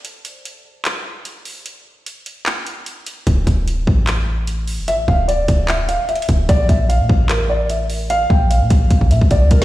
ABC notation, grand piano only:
X:1
M:4/4
L:1/8
Q:1/4=149
K:Dm
V:1 name="Grand piano"
z8 | z8 | z8 | e f d2 e f e z |
d e f2 B d e z | f g f3 e d B |]